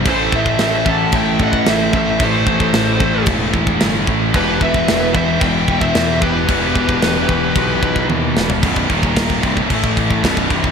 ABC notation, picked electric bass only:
X:1
M:4/4
L:1/8
Q:1/4=112
K:none
V:1 name="Picked electric bass" clef=bass
A,,, A,,, A,,, A,,, A,,, A,,, A,,, A,,, | A,,, A,,, A,,, A,,, E,,, E,,, G,,, A,,, | E,,, E,,, E,,, E,,, E,,, E,,, E,, E,,, | E,,, E,,, E,,, E,,, B,,, B,,, ^D,, E,,, |
B,,,, ^D,,,2 C,,, A,,,2 B,,,, C,,, |]